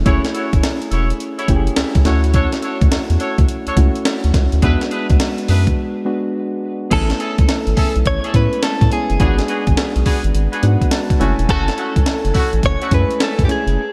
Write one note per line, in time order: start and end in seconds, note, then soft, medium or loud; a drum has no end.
0.00 0.06 A3 medium
0.00 0.07 C#4 medium
0.00 0.06 E4 medium
0.00 0.07 G#4 medium
0.05 0.19 F#1 loud
0.05 1.13 A3 medium
0.05 1.13 C#4 medium
0.05 0.22 E4 medium
0.05 1.13 E4 medium
0.05 0.22 F#4 medium
0.05 1.14 G#4 medium
0.05 0.22 A4 medium
0.05 0.22 C#5 loud
0.05 kick loud
0.05 closed hi-hat medium
0.24 snare medium
0.24 closed hi-hat medium
0.34 0.50 E4 medium
0.34 0.50 F#4 medium
0.34 0.50 A4 medium
0.34 0.50 C#5 medium
0.34 closed hi-hat medium
0.53 0.61 F#1 medium
0.53 kick loud
0.53 closed hi-hat medium
0.63 snare loud
0.63 closed hi-hat medium
0.82 closed hi-hat soft
0.91 1.12 E1 medium
0.91 1.07 E4 medium
0.91 1.07 F#4 medium
0.91 1.07 A4 medium
0.91 1.08 C#5 medium
0.91 closed hi-hat medium
1.10 closed hi-hat soft
1.20 closed hi-hat medium
1.38 1.47 E4 medium
1.38 1.47 F#4 medium
1.38 1.47 A4 medium
1.38 1.47 C#5 medium
1.38 closed hi-hat medium
1.48 1.69 F#1 medium
1.48 2.04 A3 medium
1.48 2.05 C#4 medium
1.48 2.05 E4 medium
1.48 1.58 G4 medium
1.48 kick medium
1.48 closed hi-hat medium
1.56 2.10 G#4 medium
1.67 closed hi-hat soft
1.76 1.85 C#2 soft
1.76 snare loud
1.76 closed hi-hat medium
1.95 2.03 C#2 medium
1.95 kick loud
1.95 closed hi-hat medium
2.05 2.47 D2 loud
2.05 3.13 A3 medium
2.05 3.13 C#4 medium
2.05 2.22 D4 medium
2.05 3.13 E4 medium
2.05 2.22 F#4 medium
2.05 3.14 F#4 medium
2.05 2.22 A4 medium
2.05 2.22 C#5 medium
2.05 snare medium
2.05 closed hi-hat medium
2.24 closed hi-hat soft
2.34 2.50 D4 loud
2.34 2.50 F#4 medium
2.34 2.50 A4 medium
2.34 2.51 C#5 loud
2.34 kick loud
2.34 closed hi-hat medium
2.52 snare medium
2.52 closed hi-hat medium
2.62 2.79 D4 medium
2.62 2.79 F#4 medium
2.62 2.79 A4 medium
2.62 2.79 C#5 medium
2.62 closed hi-hat medium
2.81 2.89 D2 medium
2.81 kick loud
2.81 closed hi-hat medium
2.91 2.99 E2 medium
2.91 snare loud
2.91 closed hi-hat medium
3.10 3.17 E2 medium
3.10 closed hi-hat medium
3.19 3.36 D4 medium
3.19 3.36 F#4 medium
3.19 3.36 A4 medium
3.19 3.36 C#5 medium
3.19 closed hi-hat medium
3.38 3.46 D2 medium
3.38 kick medium
3.38 closed hi-hat soft
3.48 closed hi-hat medium
3.67 3.71 C#2 soft
3.67 3.76 D4 medium
3.67 3.76 F#4 medium
3.67 3.76 A4 medium
3.67 3.76 C#5 medium
3.67 closed hi-hat medium
3.76 3.90 C#2 loud
3.76 4.57 A3 medium
3.76 4.57 C#4 medium
3.76 4.57 E4 medium
3.76 4.58 F#4 medium
3.76 kick medium
3.76 closed hi-hat medium
3.95 closed hi-hat soft
4.05 snare loud
4.05 closed hi-hat medium
4.24 4.32 D2 medium
4.24 closed hi-hat medium
4.34 4.48 C#2 medium
4.34 kick loud
4.34 snare medium
4.34 closed hi-hat medium
4.52 4.60 D2 medium
4.52 closed hi-hat medium
4.62 4.76 E2 loud
4.62 5.70 G#3 medium
4.62 5.70 B3 medium
4.62 4.79 D4 medium
4.62 5.70 D4 medium
4.62 4.79 E4 medium
4.62 5.71 F#4 loud
4.62 4.79 G#4 medium
4.62 4.79 B4 loud
4.62 kick loud
4.62 closed hi-hat medium
4.81 snare medium
4.81 closed hi-hat medium
4.91 5.07 D4 medium
4.91 5.07 E4 medium
4.91 5.07 G#4 medium
4.91 5.07 B4 medium
4.91 closed hi-hat medium
5.10 5.18 D2 medium
5.10 kick loud
5.10 closed hi-hat medium
5.20 snare loud
5.20 closed hi-hat medium
5.38 closed hi-hat soft
5.48 5.70 F#2 medium
5.48 5.64 D4 medium
5.48 5.65 E4 medium
5.48 5.65 G#4 medium
5.48 5.65 B4 medium
5.48 open hi-hat medium
5.67 kick medium
5.67 closed hi-hat soft
6.05 6.86 G#3 medium
6.05 6.86 B3 medium
6.05 6.86 D4 medium
6.05 6.86 F#4 medium
6.91 7.12 A1 loud
6.91 7.98 A3 medium
6.91 7.98 B3 medium
6.91 7.07 C#4 loud
6.91 7.99 C#4 medium
6.91 7.07 E4 medium
6.91 7.99 E4 medium
6.91 7.07 G#4 medium
6.91 7.07 A4 loud
6.91 8.07 A4 medium
6.91 kick loud
6.91 closed hi-hat medium
6.91 crash medium
7.10 snare medium
7.10 closed hi-hat medium
7.19 7.36 C#4 medium
7.19 7.36 E4 medium
7.19 7.36 G#4 medium
7.19 7.36 A4 medium
7.19 closed hi-hat medium
7.38 7.46 C#2 medium
7.38 kick loud
7.38 closed hi-hat medium
7.49 snare loud
7.49 closed hi-hat medium
7.67 7.74 G#1 medium
7.67 closed hi-hat soft
7.76 7.93 C#4 medium
7.76 7.93 E4 medium
7.76 7.93 G#4 medium
7.76 7.93 A4 medium
7.76 kick medium
7.76 open hi-hat medium
7.96 8.03 B1 medium
7.96 closed hi-hat soft
8.05 8.19 A1 medium
8.05 8.35 C#5 loud
8.05 kick medium
8.05 closed hi-hat medium
8.24 8.33 C#4 medium
8.24 8.33 E4 medium
8.24 8.33 G#4 medium
8.24 8.33 A4 medium
8.24 closed hi-hat medium
8.34 8.48 A2 loud
8.34 8.88 G#3 medium
8.34 8.88 B3 medium
8.34 8.88 C#4 medium
8.34 8.89 E4 medium
8.34 8.62 B4 medium
8.34 kick medium
8.34 closed hi-hat medium
8.53 closed hi-hat soft
8.63 8.92 A4 medium
8.63 snare loud
8.63 closed hi-hat medium
8.81 8.89 A2 medium
8.81 kick loud
8.81 closed hi-hat soft
8.91 9.18 G#3 medium
8.91 9.19 B3 medium
8.91 9.19 C#4 medium
8.91 9.19 E4 medium
8.91 10.60 G#4 medium
8.91 closed hi-hat medium
9.10 9.18 F#1 medium
9.10 closed hi-hat soft
9.19 9.41 G#1 loud
9.19 10.27 G#3 medium
9.19 9.36 B3 medium
9.19 10.27 B3 medium
9.19 9.36 D4 medium
9.19 10.27 D4 medium
9.19 9.29 F4 medium
9.19 9.36 F#4 medium
9.19 9.36 G#4 loud
9.19 kick loud
9.19 closed hi-hat medium
9.27 10.31 F#4 medium
9.38 snare medium
9.38 closed hi-hat medium
9.48 9.65 B3 medium
9.48 9.65 D4 medium
9.48 9.65 F#4 medium
9.48 9.65 G#4 medium
9.48 closed hi-hat medium
9.67 9.75 G#1 loud
9.67 kick loud
9.67 closed hi-hat medium
9.77 snare loud
9.77 closed hi-hat medium
9.96 10.03 B1 medium
9.96 closed hi-hat soft
10.05 10.22 B3 medium
10.05 10.22 D4 medium
10.05 10.22 F#4 medium
10.05 10.22 G#4 medium
10.05 kick medium
10.05 open hi-hat medium
10.24 10.32 G#1 medium
10.24 closed hi-hat medium
10.34 10.48 G#1 loud
10.34 closed hi-hat medium
10.52 10.61 B3 medium
10.52 10.62 D4 medium
10.52 10.62 F#4 medium
10.52 10.62 G#4 medium
10.52 closed hi-hat medium
10.63 10.77 G#2 loud
10.63 11.16 G#3 medium
10.63 11.17 B3 medium
10.63 11.17 D4 medium
10.63 11.17 F#4 medium
10.63 10.90 F#5 medium
10.63 closed hi-hat medium
10.81 kick medium
10.81 closed hi-hat soft
10.91 11.45 A5 medium
10.91 snare loud
10.91 closed hi-hat medium
11.10 kick loud
11.10 closed hi-hat soft
11.19 11.34 F#1 loud
11.19 11.36 A3 medium
11.19 12.27 A3 medium
11.19 11.36 C#4 medium
11.19 12.27 C#4 medium
11.19 11.36 E4 medium
11.19 12.28 E4 medium
11.19 11.36 F#4 medium
11.19 12.28 G#5 loud
11.19 closed hi-hat medium
11.39 11.46 E1 loud
11.39 closed hi-hat medium
11.48 11.70 F#1 loud
11.48 11.65 A3 loud
11.48 11.65 C#4 medium
11.48 11.65 E4 medium
11.48 11.65 F#4 loud
11.48 12.65 A4 medium
11.48 kick loud
11.48 closed hi-hat medium
11.68 snare medium
11.68 closed hi-hat medium
11.77 11.93 A3 medium
11.77 11.93 C#4 medium
11.77 11.93 E4 medium
11.77 11.93 F#4 medium
11.77 closed hi-hat medium
11.96 12.04 C#2 medium
11.96 kick loud
11.96 closed hi-hat medium
12.06 snare loud
12.06 closed hi-hat medium
12.25 12.32 F#1 medium
12.25 closed hi-hat soft
12.34 12.50 A3 medium
12.34 12.50 C#4 medium
12.34 12.50 E4 medium
12.34 12.50 F#4 medium
12.34 kick medium
12.34 open hi-hat medium
12.53 12.61 A1 medium
12.53 closed hi-hat soft
12.63 12.77 F#1 medium
12.63 12.94 C#5 loud
12.63 kick medium
12.63 closed hi-hat medium
12.81 12.90 A3 medium
12.81 12.90 C#4 medium
12.81 12.90 E4 medium
12.81 12.90 F#4 medium
12.81 closed hi-hat medium
12.91 13.05 F#2 loud
12.91 13.00 G#3 medium
12.91 13.45 C#4 medium
12.91 13.46 E4 medium
12.91 13.46 G#4 medium
12.91 13.22 B4 medium
12.91 kick loud
12.91 closed hi-hat medium
12.98 13.47 A3 medium
13.11 closed hi-hat medium
13.20 13.45 A4 medium
13.20 snare loud
13.20 closed hi-hat medium
13.39 13.46 F#2 medium
13.39 kick loud
13.39 closed hi-hat medium
13.45 13.75 A3 medium
13.45 13.75 C#4 medium
13.45 13.76 E4 medium
13.45 13.49 G4 medium
13.49 13.76 G#4 medium
13.49 13.93 G#4 medium
13.49 closed hi-hat medium
13.67 13.77 F#1 medium
13.67 closed hi-hat soft